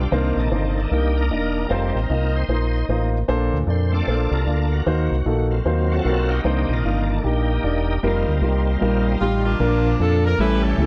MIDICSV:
0, 0, Header, 1, 5, 480
1, 0, Start_track
1, 0, Key_signature, -2, "major"
1, 0, Tempo, 395517
1, 142, Time_signature, 4, 2, 24, 8
1, 13182, End_track
2, 0, Start_track
2, 0, Title_t, "Saxophone section"
2, 0, Program_c, 0, 65
2, 11167, Note_on_c, 0, 65, 77
2, 11444, Note_off_c, 0, 65, 0
2, 11459, Note_on_c, 0, 65, 80
2, 11464, Note_on_c, 0, 62, 63
2, 11470, Note_on_c, 0, 58, 62
2, 12084, Note_off_c, 0, 65, 0
2, 12139, Note_on_c, 0, 69, 104
2, 12383, Note_off_c, 0, 62, 0
2, 12385, Note_off_c, 0, 58, 0
2, 12417, Note_off_c, 0, 69, 0
2, 12443, Note_on_c, 0, 70, 88
2, 12610, Note_off_c, 0, 70, 0
2, 12612, Note_on_c, 0, 71, 97
2, 12614, Note_on_c, 0, 67, 80
2, 12622, Note_on_c, 0, 64, 74
2, 12899, Note_off_c, 0, 64, 0
2, 12906, Note_on_c, 0, 69, 102
2, 12914, Note_off_c, 0, 71, 0
2, 12914, Note_on_c, 0, 64, 77
2, 12916, Note_on_c, 0, 61, 73
2, 13182, Note_off_c, 0, 61, 0
2, 13182, Note_off_c, 0, 64, 0
2, 13182, Note_off_c, 0, 67, 0
2, 13182, Note_off_c, 0, 69, 0
2, 13182, End_track
3, 0, Start_track
3, 0, Title_t, "Grand piano"
3, 0, Program_c, 1, 0
3, 136, Note_on_c, 1, 58, 87
3, 142, Note_on_c, 1, 48, 57
3, 145, Note_on_c, 1, 63, 81
3, 147, Note_on_c, 1, 62, 80
3, 148, Note_on_c, 1, 72, 98
3, 474, Note_off_c, 1, 58, 0
3, 478, Note_off_c, 1, 63, 0
3, 479, Note_off_c, 1, 62, 0
3, 479, Note_off_c, 1, 72, 0
3, 620, Note_on_c, 1, 58, 71
3, 624, Note_on_c, 1, 62, 62
3, 624, Note_on_c, 1, 63, 63
3, 626, Note_on_c, 1, 72, 76
3, 869, Note_off_c, 1, 48, 0
3, 955, Note_off_c, 1, 58, 0
3, 957, Note_off_c, 1, 62, 0
3, 957, Note_off_c, 1, 63, 0
3, 958, Note_off_c, 1, 72, 0
3, 1105, Note_on_c, 1, 58, 70
3, 1108, Note_on_c, 1, 62, 65
3, 1110, Note_on_c, 1, 63, 66
3, 1114, Note_on_c, 1, 70, 77
3, 1437, Note_off_c, 1, 58, 0
3, 1439, Note_off_c, 1, 62, 0
3, 1440, Note_off_c, 1, 63, 0
3, 1442, Note_off_c, 1, 70, 0
3, 1591, Note_on_c, 1, 62, 63
3, 1593, Note_on_c, 1, 75, 69
3, 1595, Note_on_c, 1, 58, 69
3, 1598, Note_on_c, 1, 63, 58
3, 1920, Note_off_c, 1, 62, 0
3, 1921, Note_off_c, 1, 75, 0
3, 1922, Note_off_c, 1, 58, 0
3, 1923, Note_off_c, 1, 63, 0
3, 2063, Note_on_c, 1, 58, 80
3, 2069, Note_on_c, 1, 63, 75
3, 2069, Note_on_c, 1, 65, 79
3, 2072, Note_on_c, 1, 72, 98
3, 2396, Note_off_c, 1, 58, 0
3, 2399, Note_off_c, 1, 63, 0
3, 2399, Note_off_c, 1, 65, 0
3, 2400, Note_off_c, 1, 72, 0
3, 2548, Note_on_c, 1, 63, 58
3, 2550, Note_on_c, 1, 58, 68
3, 2552, Note_on_c, 1, 65, 59
3, 2559, Note_on_c, 1, 75, 73
3, 2878, Note_off_c, 1, 63, 0
3, 2879, Note_off_c, 1, 58, 0
3, 2880, Note_off_c, 1, 65, 0
3, 2884, Note_off_c, 1, 75, 0
3, 3022, Note_on_c, 1, 65, 62
3, 3025, Note_on_c, 1, 58, 70
3, 3025, Note_on_c, 1, 72, 75
3, 3028, Note_on_c, 1, 63, 61
3, 3355, Note_off_c, 1, 65, 0
3, 3356, Note_off_c, 1, 58, 0
3, 3357, Note_off_c, 1, 72, 0
3, 3358, Note_off_c, 1, 63, 0
3, 3506, Note_on_c, 1, 63, 66
3, 3509, Note_on_c, 1, 58, 76
3, 3510, Note_on_c, 1, 65, 65
3, 3514, Note_on_c, 1, 72, 81
3, 3837, Note_off_c, 1, 63, 0
3, 3838, Note_off_c, 1, 58, 0
3, 3839, Note_off_c, 1, 65, 0
3, 3841, Note_off_c, 1, 72, 0
3, 3982, Note_on_c, 1, 62, 93
3, 3984, Note_on_c, 1, 58, 97
3, 3988, Note_on_c, 1, 46, 69
3, 3988, Note_on_c, 1, 69, 91
3, 3988, Note_on_c, 1, 72, 108
3, 4315, Note_off_c, 1, 62, 0
3, 4316, Note_off_c, 1, 58, 0
3, 4318, Note_off_c, 1, 69, 0
3, 4318, Note_off_c, 1, 72, 0
3, 4455, Note_on_c, 1, 58, 65
3, 4459, Note_on_c, 1, 62, 61
3, 4461, Note_on_c, 1, 69, 59
3, 4463, Note_on_c, 1, 74, 75
3, 4712, Note_off_c, 1, 46, 0
3, 4792, Note_off_c, 1, 58, 0
3, 4793, Note_off_c, 1, 62, 0
3, 4794, Note_off_c, 1, 69, 0
3, 4796, Note_off_c, 1, 74, 0
3, 4941, Note_on_c, 1, 58, 69
3, 4946, Note_on_c, 1, 62, 66
3, 4946, Note_on_c, 1, 69, 63
3, 4952, Note_on_c, 1, 72, 77
3, 5275, Note_off_c, 1, 58, 0
3, 5277, Note_off_c, 1, 69, 0
3, 5278, Note_off_c, 1, 62, 0
3, 5280, Note_off_c, 1, 72, 0
3, 5420, Note_on_c, 1, 62, 60
3, 5421, Note_on_c, 1, 58, 70
3, 5423, Note_on_c, 1, 74, 72
3, 5425, Note_on_c, 1, 69, 59
3, 5755, Note_off_c, 1, 58, 0
3, 5755, Note_off_c, 1, 62, 0
3, 5756, Note_off_c, 1, 74, 0
3, 5757, Note_off_c, 1, 69, 0
3, 5900, Note_on_c, 1, 51, 58
3, 5902, Note_on_c, 1, 58, 81
3, 5902, Note_on_c, 1, 63, 80
3, 5906, Note_on_c, 1, 72, 96
3, 5909, Note_on_c, 1, 66, 81
3, 6236, Note_off_c, 1, 58, 0
3, 6236, Note_off_c, 1, 63, 0
3, 6238, Note_off_c, 1, 72, 0
3, 6239, Note_off_c, 1, 66, 0
3, 6377, Note_on_c, 1, 63, 68
3, 6379, Note_on_c, 1, 66, 70
3, 6381, Note_on_c, 1, 58, 77
3, 6383, Note_on_c, 1, 69, 86
3, 6629, Note_off_c, 1, 51, 0
3, 6714, Note_off_c, 1, 63, 0
3, 6714, Note_off_c, 1, 66, 0
3, 6715, Note_off_c, 1, 58, 0
3, 6717, Note_off_c, 1, 69, 0
3, 6856, Note_on_c, 1, 58, 84
3, 6859, Note_on_c, 1, 66, 70
3, 6861, Note_on_c, 1, 63, 77
3, 6865, Note_on_c, 1, 72, 89
3, 7193, Note_off_c, 1, 58, 0
3, 7195, Note_off_c, 1, 66, 0
3, 7196, Note_off_c, 1, 63, 0
3, 7198, Note_off_c, 1, 72, 0
3, 7330, Note_on_c, 1, 66, 60
3, 7331, Note_on_c, 1, 58, 67
3, 7332, Note_on_c, 1, 63, 63
3, 7342, Note_on_c, 1, 70, 73
3, 7671, Note_off_c, 1, 58, 0
3, 7671, Note_off_c, 1, 66, 0
3, 7672, Note_off_c, 1, 63, 0
3, 7676, Note_off_c, 1, 70, 0
3, 7817, Note_on_c, 1, 58, 84
3, 7821, Note_on_c, 1, 48, 56
3, 7822, Note_on_c, 1, 62, 76
3, 7824, Note_on_c, 1, 63, 83
3, 7829, Note_on_c, 1, 72, 90
3, 8154, Note_off_c, 1, 58, 0
3, 8157, Note_off_c, 1, 62, 0
3, 8158, Note_off_c, 1, 63, 0
3, 8160, Note_off_c, 1, 72, 0
3, 8309, Note_on_c, 1, 58, 69
3, 8314, Note_on_c, 1, 65, 74
3, 8315, Note_on_c, 1, 62, 65
3, 8315, Note_on_c, 1, 63, 61
3, 8551, Note_off_c, 1, 48, 0
3, 8641, Note_off_c, 1, 58, 0
3, 8643, Note_off_c, 1, 65, 0
3, 8644, Note_off_c, 1, 62, 0
3, 8644, Note_off_c, 1, 63, 0
3, 8780, Note_on_c, 1, 58, 72
3, 8782, Note_on_c, 1, 62, 61
3, 8782, Note_on_c, 1, 67, 78
3, 8785, Note_on_c, 1, 63, 62
3, 9116, Note_off_c, 1, 58, 0
3, 9117, Note_off_c, 1, 62, 0
3, 9117, Note_off_c, 1, 67, 0
3, 9119, Note_off_c, 1, 63, 0
3, 9262, Note_on_c, 1, 58, 63
3, 9263, Note_on_c, 1, 63, 62
3, 9264, Note_on_c, 1, 62, 59
3, 9269, Note_on_c, 1, 74, 71
3, 9597, Note_off_c, 1, 58, 0
3, 9598, Note_off_c, 1, 62, 0
3, 9598, Note_off_c, 1, 63, 0
3, 9601, Note_off_c, 1, 74, 0
3, 9745, Note_on_c, 1, 55, 85
3, 9748, Note_on_c, 1, 63, 77
3, 9752, Note_on_c, 1, 65, 74
3, 9756, Note_on_c, 1, 70, 97
3, 10079, Note_off_c, 1, 55, 0
3, 10081, Note_off_c, 1, 63, 0
3, 10083, Note_off_c, 1, 65, 0
3, 10084, Note_off_c, 1, 70, 0
3, 10216, Note_on_c, 1, 55, 65
3, 10221, Note_on_c, 1, 65, 58
3, 10222, Note_on_c, 1, 63, 58
3, 10225, Note_on_c, 1, 70, 73
3, 10555, Note_off_c, 1, 55, 0
3, 10557, Note_off_c, 1, 65, 0
3, 10558, Note_off_c, 1, 63, 0
3, 10559, Note_off_c, 1, 70, 0
3, 10692, Note_on_c, 1, 55, 80
3, 10693, Note_on_c, 1, 65, 71
3, 10695, Note_on_c, 1, 63, 73
3, 10702, Note_on_c, 1, 70, 87
3, 11033, Note_off_c, 1, 55, 0
3, 11033, Note_off_c, 1, 65, 0
3, 11034, Note_off_c, 1, 63, 0
3, 11037, Note_off_c, 1, 70, 0
3, 11180, Note_on_c, 1, 65, 67
3, 11181, Note_on_c, 1, 55, 74
3, 11181, Note_on_c, 1, 67, 87
3, 11183, Note_on_c, 1, 63, 65
3, 11516, Note_off_c, 1, 65, 0
3, 11517, Note_off_c, 1, 55, 0
3, 11517, Note_off_c, 1, 67, 0
3, 11518, Note_off_c, 1, 63, 0
3, 11650, Note_on_c, 1, 46, 58
3, 11650, Note_on_c, 1, 62, 88
3, 11652, Note_on_c, 1, 70, 97
3, 11653, Note_on_c, 1, 65, 84
3, 11991, Note_off_c, 1, 62, 0
3, 11992, Note_off_c, 1, 65, 0
3, 11992, Note_off_c, 1, 70, 0
3, 12137, Note_on_c, 1, 62, 77
3, 12141, Note_on_c, 1, 65, 65
3, 12147, Note_on_c, 1, 69, 80
3, 12384, Note_off_c, 1, 46, 0
3, 12474, Note_off_c, 1, 62, 0
3, 12476, Note_off_c, 1, 65, 0
3, 12479, Note_off_c, 1, 69, 0
3, 12619, Note_on_c, 1, 55, 76
3, 12623, Note_on_c, 1, 64, 69
3, 12623, Note_on_c, 1, 69, 83
3, 12624, Note_on_c, 1, 45, 70
3, 12624, Note_on_c, 1, 61, 69
3, 12625, Note_on_c, 1, 57, 66
3, 12955, Note_off_c, 1, 55, 0
3, 12957, Note_off_c, 1, 61, 0
3, 12957, Note_off_c, 1, 64, 0
3, 12957, Note_off_c, 1, 69, 0
3, 12958, Note_off_c, 1, 57, 0
3, 13104, Note_on_c, 1, 55, 72
3, 13106, Note_on_c, 1, 57, 64
3, 13112, Note_on_c, 1, 61, 68
3, 13112, Note_on_c, 1, 64, 69
3, 13114, Note_on_c, 1, 69, 79
3, 13182, Note_off_c, 1, 45, 0
3, 13182, Note_off_c, 1, 55, 0
3, 13182, Note_off_c, 1, 57, 0
3, 13182, Note_off_c, 1, 61, 0
3, 13182, Note_off_c, 1, 64, 0
3, 13182, Note_off_c, 1, 69, 0
3, 13182, End_track
4, 0, Start_track
4, 0, Title_t, "Tonewheel organ"
4, 0, Program_c, 2, 16
4, 0, Note_on_c, 2, 67, 85
4, 135, Note_on_c, 2, 51, 55
4, 140, Note_on_c, 2, 58, 64
4, 155, Note_on_c, 2, 62, 65
4, 162, Note_off_c, 2, 67, 0
4, 164, Note_on_c, 2, 65, 86
4, 448, Note_off_c, 2, 62, 0
4, 456, Note_on_c, 2, 63, 67
4, 459, Note_off_c, 2, 65, 0
4, 462, Note_on_c, 2, 62, 61
4, 473, Note_on_c, 2, 69, 85
4, 876, Note_off_c, 2, 51, 0
4, 926, Note_off_c, 2, 58, 0
4, 940, Note_off_c, 2, 62, 0
4, 940, Note_on_c, 2, 58, 41
4, 942, Note_on_c, 2, 51, 44
4, 954, Note_on_c, 2, 62, 52
4, 1094, Note_off_c, 2, 58, 0
4, 1095, Note_off_c, 2, 51, 0
4, 1102, Note_off_c, 2, 62, 0
4, 1118, Note_off_c, 2, 63, 0
4, 1132, Note_on_c, 2, 67, 97
4, 1133, Note_on_c, 2, 63, 66
4, 1134, Note_on_c, 2, 58, 67
4, 1136, Note_off_c, 2, 69, 0
4, 1402, Note_off_c, 2, 63, 0
4, 1417, Note_on_c, 2, 63, 69
4, 1422, Note_off_c, 2, 67, 0
4, 1425, Note_on_c, 2, 62, 73
4, 1425, Note_on_c, 2, 70, 99
4, 2023, Note_off_c, 2, 63, 0
4, 2027, Note_off_c, 2, 58, 0
4, 2027, Note_off_c, 2, 62, 0
4, 2044, Note_on_c, 2, 55, 50
4, 2054, Note_on_c, 2, 58, 48
4, 2055, Note_on_c, 2, 63, 69
4, 2060, Note_on_c, 2, 60, 72
4, 2060, Note_on_c, 2, 69, 93
4, 2092, Note_off_c, 2, 70, 0
4, 2336, Note_off_c, 2, 69, 0
4, 2362, Note_off_c, 2, 63, 0
4, 2376, Note_on_c, 2, 63, 67
4, 2380, Note_on_c, 2, 70, 92
4, 2403, Note_off_c, 2, 55, 0
4, 2408, Note_off_c, 2, 58, 0
4, 2840, Note_off_c, 2, 63, 0
4, 2855, Note_on_c, 2, 63, 62
4, 2862, Note_off_c, 2, 70, 0
4, 2868, Note_on_c, 2, 72, 103
4, 2970, Note_off_c, 2, 60, 0
4, 3469, Note_off_c, 2, 72, 0
4, 3757, Note_off_c, 2, 63, 0
4, 4493, Note_on_c, 2, 72, 80
4, 4755, Note_on_c, 2, 57, 47
4, 4765, Note_on_c, 2, 60, 47
4, 4777, Note_on_c, 2, 62, 55
4, 4779, Note_on_c, 2, 65, 68
4, 4781, Note_off_c, 2, 72, 0
4, 4781, Note_on_c, 2, 69, 68
4, 4789, Note_on_c, 2, 74, 91
4, 5042, Note_off_c, 2, 57, 0
4, 5047, Note_off_c, 2, 60, 0
4, 5053, Note_off_c, 2, 62, 0
4, 5232, Note_off_c, 2, 65, 0
4, 5246, Note_on_c, 2, 65, 61
4, 5250, Note_on_c, 2, 70, 101
4, 5253, Note_on_c, 2, 62, 61
4, 5267, Note_off_c, 2, 74, 0
4, 5681, Note_off_c, 2, 69, 0
4, 5710, Note_off_c, 2, 70, 0
4, 5725, Note_on_c, 2, 70, 74
4, 5732, Note_on_c, 2, 66, 52
4, 5858, Note_off_c, 2, 65, 0
4, 5862, Note_off_c, 2, 62, 0
4, 6168, Note_off_c, 2, 70, 0
4, 6637, Note_off_c, 2, 66, 0
4, 6684, Note_on_c, 2, 54, 50
4, 6688, Note_on_c, 2, 65, 58
4, 6694, Note_on_c, 2, 60, 50
4, 7164, Note_off_c, 2, 60, 0
4, 7178, Note_on_c, 2, 60, 74
4, 7181, Note_on_c, 2, 66, 74
4, 7191, Note_on_c, 2, 69, 122
4, 7644, Note_on_c, 2, 63, 64
4, 7645, Note_on_c, 2, 58, 70
4, 7651, Note_on_c, 2, 67, 97
4, 7669, Note_off_c, 2, 69, 0
4, 7775, Note_off_c, 2, 54, 0
4, 7777, Note_off_c, 2, 65, 0
4, 7785, Note_off_c, 2, 60, 0
4, 7787, Note_off_c, 2, 66, 0
4, 7815, Note_off_c, 2, 58, 0
4, 7827, Note_on_c, 2, 51, 53
4, 7830, Note_on_c, 2, 58, 48
4, 7840, Note_on_c, 2, 62, 60
4, 8126, Note_off_c, 2, 58, 0
4, 8128, Note_off_c, 2, 62, 0
4, 8140, Note_off_c, 2, 67, 0
4, 8140, Note_on_c, 2, 58, 60
4, 8143, Note_on_c, 2, 62, 62
4, 8175, Note_on_c, 2, 65, 92
4, 8553, Note_off_c, 2, 63, 0
4, 8599, Note_off_c, 2, 58, 0
4, 8604, Note_off_c, 2, 51, 0
4, 8605, Note_off_c, 2, 62, 0
4, 8614, Note_on_c, 2, 58, 41
4, 8619, Note_on_c, 2, 51, 44
4, 8619, Note_on_c, 2, 62, 50
4, 8641, Note_off_c, 2, 65, 0
4, 8656, Note_on_c, 2, 69, 93
4, 8771, Note_off_c, 2, 58, 0
4, 8774, Note_off_c, 2, 51, 0
4, 8774, Note_off_c, 2, 62, 0
4, 8815, Note_off_c, 2, 69, 0
4, 8817, Note_on_c, 2, 63, 68
4, 8820, Note_on_c, 2, 58, 65
4, 8841, Note_on_c, 2, 67, 94
4, 9712, Note_off_c, 2, 63, 0
4, 9713, Note_off_c, 2, 58, 0
4, 9744, Note_on_c, 2, 55, 54
4, 9757, Note_on_c, 2, 58, 51
4, 9761, Note_on_c, 2, 63, 55
4, 9764, Note_on_c, 2, 60, 52
4, 9789, Note_on_c, 2, 65, 76
4, 9800, Note_off_c, 2, 67, 0
4, 11144, Note_off_c, 2, 58, 0
4, 11145, Note_off_c, 2, 60, 0
4, 11157, Note_off_c, 2, 65, 0
4, 11615, Note_off_c, 2, 55, 0
4, 11623, Note_off_c, 2, 63, 0
4, 11667, Note_on_c, 2, 53, 66
4, 11668, Note_on_c, 2, 62, 73
4, 11675, Note_on_c, 2, 58, 59
4, 12605, Note_off_c, 2, 53, 0
4, 12605, Note_off_c, 2, 62, 0
4, 12608, Note_off_c, 2, 58, 0
4, 12612, Note_on_c, 2, 55, 64
4, 12614, Note_on_c, 2, 52, 73
4, 12614, Note_on_c, 2, 57, 66
4, 12614, Note_on_c, 2, 67, 76
4, 12615, Note_on_c, 2, 61, 66
4, 13182, Note_off_c, 2, 52, 0
4, 13182, Note_off_c, 2, 55, 0
4, 13182, Note_off_c, 2, 57, 0
4, 13182, Note_off_c, 2, 61, 0
4, 13182, Note_off_c, 2, 67, 0
4, 13182, End_track
5, 0, Start_track
5, 0, Title_t, "Fingered electric bass"
5, 0, Program_c, 3, 33
5, 144, Note_on_c, 3, 36, 104
5, 396, Note_off_c, 3, 36, 0
5, 438, Note_on_c, 3, 34, 81
5, 593, Note_off_c, 3, 34, 0
5, 625, Note_on_c, 3, 31, 87
5, 1031, Note_off_c, 3, 31, 0
5, 1107, Note_on_c, 3, 36, 81
5, 1587, Note_off_c, 3, 36, 0
5, 1587, Note_on_c, 3, 28, 84
5, 1992, Note_off_c, 3, 28, 0
5, 2066, Note_on_c, 3, 29, 99
5, 2316, Note_off_c, 3, 29, 0
5, 2362, Note_on_c, 3, 33, 75
5, 2514, Note_off_c, 3, 33, 0
5, 2546, Note_on_c, 3, 36, 83
5, 2951, Note_off_c, 3, 36, 0
5, 3013, Note_on_c, 3, 34, 79
5, 3423, Note_off_c, 3, 34, 0
5, 3502, Note_on_c, 3, 33, 84
5, 3908, Note_off_c, 3, 33, 0
5, 3985, Note_on_c, 3, 34, 100
5, 4235, Note_off_c, 3, 34, 0
5, 4278, Note_on_c, 3, 38, 69
5, 4432, Note_off_c, 3, 38, 0
5, 4452, Note_on_c, 3, 41, 80
5, 4863, Note_off_c, 3, 41, 0
5, 4942, Note_on_c, 3, 34, 74
5, 5193, Note_off_c, 3, 34, 0
5, 5234, Note_on_c, 3, 36, 82
5, 5390, Note_off_c, 3, 36, 0
5, 5418, Note_on_c, 3, 38, 82
5, 5827, Note_off_c, 3, 38, 0
5, 5904, Note_on_c, 3, 39, 101
5, 6155, Note_off_c, 3, 39, 0
5, 6205, Note_on_c, 3, 36, 77
5, 6356, Note_off_c, 3, 36, 0
5, 6381, Note_on_c, 3, 34, 97
5, 6789, Note_off_c, 3, 34, 0
5, 6861, Note_on_c, 3, 39, 83
5, 7269, Note_off_c, 3, 39, 0
5, 7344, Note_on_c, 3, 35, 86
5, 7751, Note_off_c, 3, 35, 0
5, 7820, Note_on_c, 3, 36, 100
5, 8074, Note_off_c, 3, 36, 0
5, 8115, Note_on_c, 3, 34, 82
5, 8272, Note_off_c, 3, 34, 0
5, 8308, Note_on_c, 3, 31, 79
5, 8714, Note_off_c, 3, 31, 0
5, 8787, Note_on_c, 3, 34, 79
5, 9193, Note_off_c, 3, 34, 0
5, 9267, Note_on_c, 3, 28, 82
5, 9673, Note_off_c, 3, 28, 0
5, 9749, Note_on_c, 3, 29, 93
5, 9999, Note_off_c, 3, 29, 0
5, 10044, Note_on_c, 3, 38, 76
5, 10197, Note_off_c, 3, 38, 0
5, 10210, Note_on_c, 3, 36, 87
5, 10624, Note_off_c, 3, 36, 0
5, 10699, Note_on_c, 3, 34, 75
5, 11108, Note_off_c, 3, 34, 0
5, 11175, Note_on_c, 3, 33, 73
5, 11586, Note_off_c, 3, 33, 0
5, 11646, Note_on_c, 3, 34, 109
5, 12061, Note_off_c, 3, 34, 0
5, 12133, Note_on_c, 3, 41, 89
5, 12544, Note_off_c, 3, 41, 0
5, 12602, Note_on_c, 3, 33, 97
5, 13017, Note_off_c, 3, 33, 0
5, 13081, Note_on_c, 3, 37, 85
5, 13182, Note_off_c, 3, 37, 0
5, 13182, End_track
0, 0, End_of_file